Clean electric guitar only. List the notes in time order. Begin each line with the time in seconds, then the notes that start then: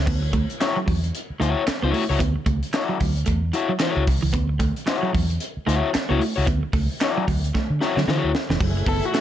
0.06 B3
0.23 muted clean electric guitar stroke
0.33 A3
0.60 muted clean electric guitar stroke
0.76 F#3
0.86 F#3
1.40 A3
1.66 muted clean electric guitar stroke
1.82 B3
1.93 A3
2.19 B3
2.36 muted clean electric guitar stroke
2.46 A3
2.73 muted clean electric guitar stroke
2.89 F#3
3.00 F#3
3.26 A3
3.53 muted clean electric guitar stroke
3.69 F#3
3.80 E3
3.95 muted clean electric guitar stroke
4.23 E3
4.33 B3
4.49 muted clean electric guitar stroke
4.59 A3
4.86 muted clean electric guitar stroke
5.03 F#3
5.13 F#3
5.67 A3
5.93 muted clean electric guitar stroke
6.09 B3
6.20 A3
6.46 B3
6.63 muted clean electric guitar stroke
6.74 A3
7.01 muted clean electric guitar stroke
7.18 F#3
7.28 F#3
7.54 A3
7.81 muted clean electric guitar stroke
7.97 F#3
8.08 E3
8.24 muted clean electric guitar stroke
8.50 E3
8.61 F#3
8.77 muted clean electric guitar stroke
8.87 B3
9.14 A3